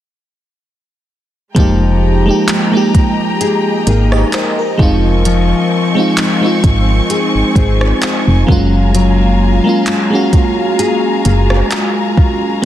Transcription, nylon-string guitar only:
0, 0, Header, 1, 2, 480
1, 0, Start_track
1, 0, Tempo, 923077
1, 812, Time_signature, 4, 2, 24, 8
1, 6578, End_track
2, 0, Start_track
2, 0, Title_t, "Nylon-string guitar"
2, 0, Program_c, 0, 24
2, 812, Note_on_c, 0, 53, 88
2, 1293, Note_on_c, 0, 63, 59
2, 1772, Note_on_c, 0, 68, 75
2, 2013, Note_on_c, 0, 58, 65
2, 2014, Note_off_c, 0, 63, 0
2, 2016, Note_on_c, 0, 63, 66
2, 2017, Note_off_c, 0, 68, 0
2, 2019, Note_on_c, 0, 68, 73
2, 2491, Note_off_c, 0, 53, 0
2, 2493, Note_on_c, 0, 53, 80
2, 2544, Note_off_c, 0, 58, 0
2, 2731, Note_off_c, 0, 53, 0
2, 2733, Note_on_c, 0, 53, 89
2, 2749, Note_off_c, 0, 63, 0
2, 3213, Note_on_c, 0, 63, 64
2, 3690, Note_off_c, 0, 68, 0
2, 3692, Note_on_c, 0, 68, 73
2, 3929, Note_off_c, 0, 63, 0
2, 3933, Note_on_c, 0, 60, 63
2, 3935, Note_on_c, 0, 63, 66
2, 3937, Note_off_c, 0, 68, 0
2, 3939, Note_on_c, 0, 68, 73
2, 4410, Note_off_c, 0, 53, 0
2, 4412, Note_on_c, 0, 54, 77
2, 4464, Note_off_c, 0, 60, 0
2, 4465, Note_off_c, 0, 63, 0
2, 4645, Note_off_c, 0, 54, 0
2, 4652, Note_on_c, 0, 54, 89
2, 4667, Note_off_c, 0, 68, 0
2, 5131, Note_on_c, 0, 65, 65
2, 5612, Note_on_c, 0, 68, 75
2, 5851, Note_off_c, 0, 65, 0
2, 5851, Note_on_c, 0, 58, 65
2, 5854, Note_on_c, 0, 65, 64
2, 5855, Note_off_c, 0, 68, 0
2, 5857, Note_on_c, 0, 68, 73
2, 6329, Note_off_c, 0, 65, 0
2, 6331, Note_on_c, 0, 65, 58
2, 6569, Note_off_c, 0, 54, 0
2, 6578, Note_off_c, 0, 58, 0
2, 6578, Note_off_c, 0, 65, 0
2, 6578, Note_off_c, 0, 68, 0
2, 6578, End_track
0, 0, End_of_file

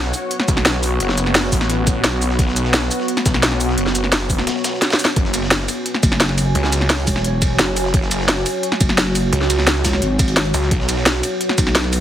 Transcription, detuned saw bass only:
0, 0, Header, 1, 2, 480
1, 0, Start_track
1, 0, Tempo, 346821
1, 1387, Time_signature, 4, 2, 24, 8
1, 16614, End_track
2, 0, Start_track
2, 0, Title_t, "Detuned saw bass"
2, 0, Program_c, 0, 39
2, 0, Note_on_c, 0, 35, 94
2, 167, Note_off_c, 0, 35, 0
2, 667, Note_on_c, 0, 35, 99
2, 1368, Note_off_c, 0, 35, 0
2, 1387, Note_on_c, 0, 30, 94
2, 2088, Note_off_c, 0, 30, 0
2, 2107, Note_on_c, 0, 33, 98
2, 2807, Note_off_c, 0, 33, 0
2, 2827, Note_on_c, 0, 35, 94
2, 3288, Note_off_c, 0, 35, 0
2, 3307, Note_on_c, 0, 35, 99
2, 4008, Note_off_c, 0, 35, 0
2, 4507, Note_on_c, 0, 35, 94
2, 5208, Note_off_c, 0, 35, 0
2, 5227, Note_on_c, 0, 30, 99
2, 5928, Note_off_c, 0, 30, 0
2, 5947, Note_on_c, 0, 30, 101
2, 6187, Note_off_c, 0, 30, 0
2, 7147, Note_on_c, 0, 30, 97
2, 7847, Note_off_c, 0, 30, 0
2, 9067, Note_on_c, 0, 37, 96
2, 9768, Note_off_c, 0, 37, 0
2, 10506, Note_on_c, 0, 30, 89
2, 10967, Note_off_c, 0, 30, 0
2, 10987, Note_on_c, 0, 30, 97
2, 11687, Note_off_c, 0, 30, 0
2, 12907, Note_on_c, 0, 37, 98
2, 13607, Note_off_c, 0, 37, 0
2, 14587, Note_on_c, 0, 37, 102
2, 14808, Note_off_c, 0, 37, 0
2, 14827, Note_on_c, 0, 35, 100
2, 15528, Note_off_c, 0, 35, 0
2, 16614, End_track
0, 0, End_of_file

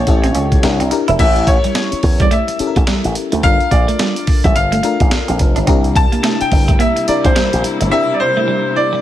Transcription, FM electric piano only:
0, 0, Header, 1, 2, 480
1, 0, Start_track
1, 0, Tempo, 560748
1, 1019, Time_signature, 4, 2, 24, 8
1, 7716, End_track
2, 0, Start_track
2, 0, Title_t, "FM electric piano"
2, 0, Program_c, 0, 5
2, 0, Control_c, 0, 64, 127
2, 59, Note_on_c, 0, 61, 81
2, 63, Note_on_c, 0, 64, 73
2, 67, Note_on_c, 0, 67, 68
2, 69, Control_c, 0, 64, 0
2, 70, Note_on_c, 0, 69, 86
2, 209, Control_c, 0, 64, 127
2, 463, Note_off_c, 0, 61, 0
2, 465, Note_off_c, 0, 64, 0
2, 467, Note_off_c, 0, 67, 0
2, 468, Note_off_c, 0, 69, 0
2, 538, Note_on_c, 0, 62, 87
2, 543, Note_on_c, 0, 64, 82
2, 545, Note_on_c, 0, 67, 79
2, 548, Note_on_c, 0, 70, 92
2, 551, Control_c, 0, 64, 0
2, 713, Control_c, 0, 64, 127
2, 741, Note_off_c, 0, 62, 0
2, 743, Note_off_c, 0, 64, 0
2, 744, Note_off_c, 0, 67, 0
2, 745, Note_off_c, 0, 70, 0
2, 780, Note_on_c, 0, 62, 87
2, 781, Note_on_c, 0, 64, 78
2, 786, Note_on_c, 0, 67, 83
2, 790, Note_on_c, 0, 70, 103
2, 959, Note_off_c, 0, 62, 0
2, 959, Note_off_c, 0, 64, 0
2, 962, Note_off_c, 0, 67, 0
2, 964, Note_off_c, 0, 70, 0
2, 1020, Note_on_c, 0, 61, 75
2, 1023, Note_on_c, 0, 64, 69
2, 1025, Note_on_c, 0, 67, 68
2, 1030, Note_on_c, 0, 70, 82
2, 1032, Control_c, 0, 64, 0
2, 1181, Control_c, 0, 64, 127
2, 1686, Note_off_c, 0, 61, 0
2, 1688, Note_off_c, 0, 64, 0
2, 1689, Note_off_c, 0, 67, 0
2, 1691, Note_off_c, 0, 70, 0
2, 2221, Note_on_c, 0, 61, 77
2, 2225, Note_on_c, 0, 64, 75
2, 2227, Note_on_c, 0, 67, 69
2, 2231, Note_on_c, 0, 69, 68
2, 2287, Note_on_c, 0, 70, 81
2, 2292, Note_off_c, 0, 69, 0
2, 2712, Note_off_c, 0, 61, 0
2, 2714, Note_off_c, 0, 64, 0
2, 2715, Note_off_c, 0, 67, 0
2, 2745, Note_off_c, 0, 70, 0
2, 2941, Note_on_c, 0, 62, 69
2, 2946, Note_on_c, 0, 65, 69
2, 2948, Note_on_c, 0, 69, 67
2, 2952, Control_c, 0, 64, 0
2, 2953, Note_on_c, 0, 70, 82
2, 3126, Control_c, 0, 64, 127
2, 3607, Note_off_c, 0, 62, 0
2, 3609, Note_off_c, 0, 65, 0
2, 3610, Note_off_c, 0, 69, 0
2, 3613, Note_off_c, 0, 70, 0
2, 4139, Note_on_c, 0, 62, 82
2, 4143, Note_on_c, 0, 65, 73
2, 4146, Note_on_c, 0, 69, 75
2, 4150, Note_on_c, 0, 70, 92
2, 4630, Note_off_c, 0, 62, 0
2, 4632, Note_off_c, 0, 65, 0
2, 4634, Note_off_c, 0, 69, 0
2, 4636, Note_off_c, 0, 70, 0
2, 4860, Note_on_c, 0, 62, 88
2, 4863, Note_on_c, 0, 64, 76
2, 4866, Note_on_c, 0, 67, 84
2, 4869, Control_c, 0, 64, 0
2, 4870, Note_on_c, 0, 70, 94
2, 5011, Control_c, 0, 64, 127
2, 5526, Note_off_c, 0, 62, 0
2, 5528, Note_off_c, 0, 64, 0
2, 5529, Note_off_c, 0, 67, 0
2, 5531, Note_off_c, 0, 70, 0
2, 6060, Note_on_c, 0, 62, 76
2, 6061, Note_on_c, 0, 64, 71
2, 6066, Note_on_c, 0, 67, 75
2, 6069, Note_on_c, 0, 70, 90
2, 6551, Note_off_c, 0, 62, 0
2, 6552, Note_off_c, 0, 64, 0
2, 6554, Note_off_c, 0, 67, 0
2, 6556, Note_off_c, 0, 70, 0
2, 6779, Note_on_c, 0, 62, 80
2, 6783, Note_on_c, 0, 64, 66
2, 6786, Note_on_c, 0, 67, 75
2, 6789, Note_on_c, 0, 70, 85
2, 7446, Note_off_c, 0, 62, 0
2, 7448, Note_off_c, 0, 64, 0
2, 7449, Note_off_c, 0, 67, 0
2, 7451, Note_off_c, 0, 70, 0
2, 7716, End_track
0, 0, End_of_file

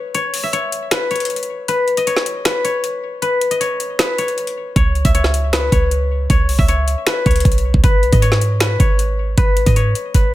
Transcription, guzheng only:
0, 0, Header, 1, 2, 480
1, 0, Start_track
1, 0, Tempo, 384615
1, 181, Time_signature, 4, 2, 24, 8
1, 12906, End_track
2, 0, Start_track
2, 0, Title_t, "Guzheng"
2, 0, Program_c, 0, 107
2, 0, Note_on_c, 0, 71, 84
2, 0, Note_on_c, 0, 73, 83
2, 0, Note_on_c, 0, 76, 85
2, 175, Note_off_c, 0, 73, 0
2, 180, Note_on_c, 0, 73, 108
2, 536, Note_off_c, 0, 76, 0
2, 541, Note_on_c, 0, 76, 84
2, 655, Note_off_c, 0, 73, 0
2, 660, Note_on_c, 0, 73, 100
2, 1136, Note_off_c, 0, 71, 0
2, 1141, Note_on_c, 0, 71, 82
2, 1377, Note_off_c, 0, 73, 0
2, 1382, Note_on_c, 0, 73, 89
2, 2095, Note_off_c, 0, 71, 0
2, 2100, Note_on_c, 0, 71, 111
2, 2462, Note_on_c, 0, 75, 86
2, 2537, Note_off_c, 0, 76, 0
2, 2576, Note_off_c, 0, 73, 0
2, 2581, Note_on_c, 0, 73, 101
2, 3053, Note_off_c, 0, 71, 0
2, 3058, Note_on_c, 0, 71, 83
2, 3294, Note_off_c, 0, 73, 0
2, 3299, Note_on_c, 0, 73, 88
2, 4013, Note_off_c, 0, 71, 0
2, 4018, Note_on_c, 0, 71, 103
2, 4373, Note_off_c, 0, 75, 0
2, 4378, Note_on_c, 0, 75, 84
2, 4495, Note_off_c, 0, 73, 0
2, 4500, Note_on_c, 0, 73, 97
2, 4974, Note_off_c, 0, 71, 0
2, 4979, Note_on_c, 0, 71, 78
2, 5215, Note_off_c, 0, 73, 0
2, 5220, Note_on_c, 0, 73, 85
2, 5936, Note_off_c, 0, 73, 0
2, 5941, Note_on_c, 0, 73, 101
2, 6302, Note_on_c, 0, 76, 87
2, 6377, Note_off_c, 0, 75, 0
2, 6415, Note_off_c, 0, 73, 0
2, 6420, Note_on_c, 0, 73, 95
2, 6895, Note_off_c, 0, 71, 0
2, 6900, Note_on_c, 0, 71, 84
2, 7136, Note_off_c, 0, 73, 0
2, 7141, Note_on_c, 0, 73, 85
2, 7855, Note_off_c, 0, 73, 0
2, 7860, Note_on_c, 0, 73, 109
2, 8216, Note_off_c, 0, 76, 0
2, 8221, Note_on_c, 0, 76, 90
2, 8336, Note_off_c, 0, 73, 0
2, 8341, Note_on_c, 0, 73, 97
2, 8815, Note_off_c, 0, 71, 0
2, 8820, Note_on_c, 0, 71, 82
2, 9056, Note_off_c, 0, 73, 0
2, 9061, Note_on_c, 0, 73, 85
2, 9776, Note_off_c, 0, 71, 0
2, 9781, Note_on_c, 0, 71, 110
2, 10140, Note_on_c, 0, 75, 86
2, 10215, Note_off_c, 0, 76, 0
2, 10254, Note_off_c, 0, 73, 0
2, 10259, Note_on_c, 0, 73, 102
2, 10735, Note_off_c, 0, 71, 0
2, 10740, Note_on_c, 0, 71, 80
2, 10976, Note_off_c, 0, 73, 0
2, 10981, Note_on_c, 0, 73, 83
2, 11696, Note_off_c, 0, 71, 0
2, 11701, Note_on_c, 0, 71, 101
2, 12054, Note_off_c, 0, 75, 0
2, 12059, Note_on_c, 0, 75, 84
2, 12176, Note_off_c, 0, 73, 0
2, 12181, Note_on_c, 0, 73, 98
2, 12656, Note_off_c, 0, 71, 0
2, 12661, Note_on_c, 0, 71, 78
2, 12896, Note_off_c, 0, 73, 0
2, 12906, Note_off_c, 0, 71, 0
2, 12906, Note_off_c, 0, 75, 0
2, 12906, End_track
0, 0, End_of_file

